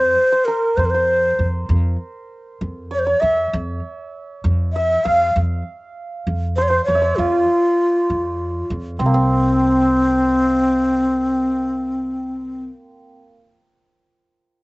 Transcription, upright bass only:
0.00 0.14 F2 medium
0.77 1.29 F2 medium
1.39 1.65 F2 medium
1.69 1.95 F2 medium
2.61 3.13 F2 medium
3.23 3.48 F2 medium
3.53 3.79 F2 medium
4.44 4.95 F2 medium
5.05 5.31 F2 medium
5.36 5.61 F2 medium
6.27 6.78 F2 medium
6.88 7.13 F2 medium
7.18 7.43 F2 medium
8.10 8.61 F2 medium
8.70 8.95 F2 medium
9.00 12.67 C2 medium

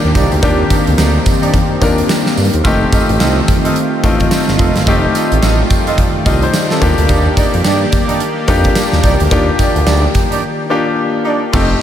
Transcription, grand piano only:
0.00 0.31 A#3 medium
0.00 0.32 D4 medium
0.00 0.32 F4 medium
0.00 0.32 G4 medium
0.43 1.37 A#3 medium
0.43 1.37 D4 medium
0.43 1.37 F4 medium
0.43 1.38 G4 medium
1.81 2.54 A#3 medium
1.81 2.54 D4 medium
1.81 2.54 F4 medium
1.81 2.54 A#4 medium
2.65 3.59 A3 medium
2.65 3.59 C4 medium
2.65 3.60 D#4 medium
2.65 3.60 G4 loud
4.03 4.76 A3 medium
4.03 4.76 C4 medium
4.03 4.76 D#4 medium
4.03 4.76 F4 medium
4.87 5.81 A3 medium
4.87 5.82 C4 medium
4.87 5.82 D#4 medium
4.87 5.82 G4 medium
6.26 6.42 G4 medium
6.26 6.42 D#5 medium
6.43 6.70 D#4 medium
6.43 6.69 C5 medium
6.71 6.97 C4 medium
6.71 6.97 A4 medium
6.81 7.76 A#3 loud
6.81 7.76 D4 medium
6.81 7.76 F4 medium
6.81 7.76 G4 loud
8.48 9.20 A#3 medium
8.48 9.21 D4 medium
8.48 9.21 F4 medium
8.48 9.21 G4 loud
9.31 10.26 A#3 medium
9.31 10.26 D4 medium
9.31 10.26 F4 medium
9.31 10.26 G4 medium
10.70 11.42 A#3 medium
10.70 11.43 D4 medium
10.70 11.43 F4 medium
10.70 11.43 G4 medium
11.53 11.82 A3 medium
11.53 11.82 C4 medium
11.53 11.82 D#4 medium
11.53 11.82 G4 medium

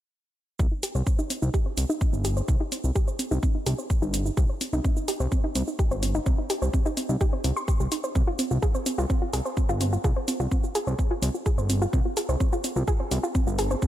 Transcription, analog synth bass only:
0.59 0.67 C2 medium
0.95 1.02 C2 medium
1.42 1.50 C2 medium
1.78 1.85 C2 medium
2.13 2.42 G1 medium
2.48 2.56 C2 medium
2.84 2.91 C2 medium
3.31 3.39 C2 medium
3.66 3.74 C2 medium
4.02 4.31 G1 medium
4.37 4.45 C2 medium
4.73 4.80 C2 medium
5.20 5.28 C2 medium
5.55 5.63 C2 medium
5.91 6.20 G1 medium
6.26 6.34 C2 medium
6.62 6.69 C2 medium
7.09 7.17 C2 medium
7.44 7.52 C2 medium
7.80 7.87 C2 medium
8.15 8.23 C2 medium
8.51 8.58 C2 medium
8.98 9.06 C2 medium
9.33 9.41 C2 medium
9.69 9.98 G1 medium
10.04 10.12 C2 medium
10.40 10.47 C2 medium
10.87 10.95 C2 medium
11.22 11.30 C2 medium
11.58 11.86 G1 medium
11.93 12.01 C2 loud
12.29 12.36 C2 medium
12.76 12.83 C2 medium
13.11 13.19 C2 medium
13.47 13.75 G1 medium
13.82 13.87 C2 loud

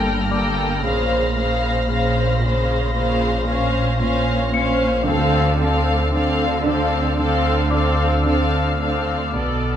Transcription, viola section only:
0.00 0.29 A#3 soft
0.30 0.82 A#3 soft
0.83 1.35 C#3 soft
1.36 1.88 C#3 soft
1.89 2.41 C#3 soft
2.43 2.94 C#3 soft
2.96 3.47 C#3 medium
3.49 4.00 C#4 soft
4.01 4.53 C#4 soft
4.54 5.06 C#4 soft
5.06 5.58 C4 medium
5.59 6.10 C4 soft
6.12 6.63 C4 soft
6.65 7.16 C4 medium
7.17 7.70 C4 medium
7.71 8.23 C4 medium
8.24 8.78 C4 soft
8.79 9.33 C4 soft
9.34 9.77 B3 soft

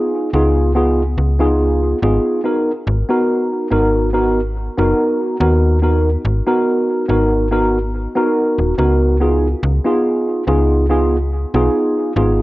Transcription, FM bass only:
0.33 1.17 C#2 medium
1.18 1.94 C#2 medium
2.02 2.19 G#1 loud
2.87 3.04 G#1 loud
3.72 4.69 G#1 medium
4.78 4.93 F#1 medium
5.40 6.17 D#2 loud
6.25 6.41 G#1 loud
7.09 8.07 G#1 medium
8.58 8.73 D#1 medium
8.78 9.55 C#2 medium
9.63 9.80 C#2 loud
10.47 11.45 C#2 medium
11.54 11.69 B1 medium
12.16 12.42 G#1 loud

